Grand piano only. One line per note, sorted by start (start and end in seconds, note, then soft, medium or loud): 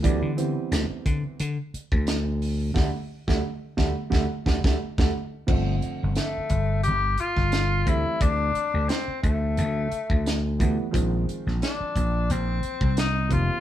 0.03 0.28 E3 medium
0.03 0.28 G3 medium
0.03 0.29 B3 medium
0.03 0.29 D4 loud
0.37 1.35 E3 medium
0.37 1.35 G3 medium
0.37 1.35 B3 medium
0.37 1.35 C4 loud
2.74 2.86 D3 medium
2.74 2.87 G3 medium
2.74 2.87 A3 medium
3.27 3.38 D3 medium
3.27 3.38 G3 medium
3.27 3.38 A3 medium
3.77 3.89 D3 medium
3.77 3.89 G3 medium
3.77 3.89 A3 loud
4.10 4.23 D3 medium
4.10 4.22 G3 medium
4.10 4.23 A3 medium
4.46 4.57 D3 medium
4.46 4.58 G3 medium
4.46 4.58 A3 medium
4.64 4.74 D3 medium
4.64 4.74 G3 medium
4.64 4.74 A3 loud
4.98 5.09 D3 loud
4.98 5.09 G3 medium
4.98 5.08 A3 medium
5.47 6.45 D3 medium
5.47 6.45 F3 medium
5.47 6.46 A3 medium
5.47 6.46 C4 medium
7.85 8.95 E3 medium
7.85 8.96 G3 medium
7.85 8.96 A3 medium
7.85 8.96 C4 medium
10.59 10.84 E3 medium
10.59 10.84 G3 medium
10.59 10.84 A3 medium
10.59 10.84 B3 medium
10.91 11.90 D#3 medium
10.91 11.90 F3 medium
10.91 11.91 G#3 medium
10.91 11.91 C4 medium
13.29 13.60 D#3 medium
13.29 13.60 G3 medium
13.29 13.60 A#3 medium
13.29 13.60 C4 medium